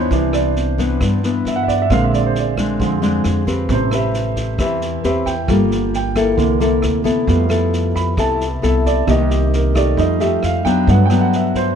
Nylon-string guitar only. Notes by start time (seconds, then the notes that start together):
Already playing: E3 B3 D4
0.12 C3
0.78 E3 B3 D4
1.01 G2
1.24 E3 B3 D4
1.90 A#2 G#3 C4 D4
2.58 G#3 C4 D4
2.80 F3
3.02 G#3 C4 D4
3.47 C4 G4 B4
3.69 A3
3.93 C4 G4 B4
4.59 E3 C4 G4 B4
5.04 C4 G4 B4
5.49 G3 A#3 F4 A4
6.16 A#3 E4 A4
6.39 C3
6.60 A#3 E4 A4
7.04 B3 E4 A4
7.27 F3
7.49 B3 E4 A4
8.18 C3 B3 E4 A4
8.62 B3 E4 A4
9.07 C3 A#3 D#4 G4
9.75 A3 D#4 G4
9.97 F3
10.20 A3 D#4 G4
10.65 F#3 B3 D4
10.88 G2
11.10 F#3 B3 D4